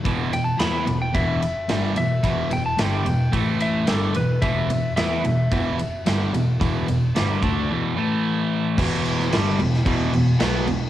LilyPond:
<<
  \new Staff \with { instrumentName = "Lead electric guitar" } { \time 4/4 \key e \minor \tempo 4 = 110 r8 g''16 a''16 b''8. g''16 e''4. e''8~ | e''8 g''16 a''16 g''4 r8 e''8 a'8 b'8 | e''4 e''2.~ | e''2. r4 |
r1 | }
  \new Staff \with { instrumentName = "Distorted electric guitar" } { \clef bass \time 4/4 \key e \minor r1 | r1 | r1 | r1 |
<e, b, e>4 <g, d g>8 <e, b,>8 <e, b, e>8 <e, b,>8 <b, fis b>8 <e, b,>8 | }
  \new Staff \with { instrumentName = "Overdriven electric guitar" } { \clef bass \time 4/4 \key e \minor <e, b, e>8 <e, b,>8 <e b e'>8 <e, b,>8 <e, b, e>8 r8 <g, d g>8 <e, b,>8 | <e, b, e>8 <e, b,>8 <g, d g>8 <e, b,>8 <a, e a>4 <g, d g>8 <e, b,>8 | <e, b, e>8 <e, b,>8 <e b e'>8 <e, b,>8 <e, b, e>8 r8 <g, d g>8 <e, b,>8 | <e, b, e>8 <e, b,>8 <g, d g>8 <d a d'>8 <e, b, e>8 <a, e a>4. |
<e, b, e>4 <g, d g>8 <e, b,>8 <e, b, e>8 <e, b,>8 <b, fis b>8 <e, b,>8 | }
  \new Staff \with { instrumentName = "Overdriven electric guitar" } { \clef bass \time 4/4 \key e \minor <e, b, e>8 <e, b,>8 <e b e'>8 <e, b,>8 <e, b, e>8 r8 <g, d g>8 <e, b,>8 | <e, b, e>8 <e, b,>8 <g, d g>8 <e, b,>8 <a, e a>4 <g, d g>8 <e, b,>8 | <e, b, e>8 <e, b,>8 <e b e'>8 <e, b,>8 <e, b, e>8 r8 <g, d g>8 <e, b,>8 | <e, b, e>8 <e, b,>8 <g, d g>8 <d a d'>8 <e, b, e>8 <a, e a>4. |
<e, b, e>4 <g, d g>8 <e, b,>8 <e, b, e>8 <e, b,>8 <b, fis b>8 <e, b,>8 | }
  \new Staff \with { instrumentName = "Double bass" } { \clef bass \time 4/4 \key e \minor e,,8 e,,8 e,8 e,,8 e,,8 r8 g,,8 e,,8 | e,,8 e,,8 g,,8 e,,8 a,,4 g,,8 e,,8 | e,,8 e,,8 e,8 e,,8 e,,8 r8 g,,8 e,,8 | e,,8 e,,8 g,,8 d,8 r2 |
e,,4 g,,8 e,,8 e,,8 e,,8 b,,8 e,,8 | }
  \new DrumStaff \with { instrumentName = "Drums" } \drummode { \time 4/4 <bd cymr>8 cymr8 <cymr sn>8 cymr8 <bd cymr>8 cymr8 <cymr sn>8 cymr8 | <bd cymr>8 cymr8 <cymr sn>8 cymr8 <bd cymr>8 cymr8 <cymr sn>8 cymr8 | <bd cymr>8 cymr8 <cymr sn>8 cymr8 <bd cymr>8 cymr8 <cymr sn>8 cymr8 | <bd cymr>8 cymr8 <cymr sn>8 <bd cymr>8 r4 r4 |
<cymc bd>8 cymc16 sn16 <cymc sn>8 cymc16 sn16 <cymc bd>8 cymc8 <cymc sn>8 cymc8 | }
>>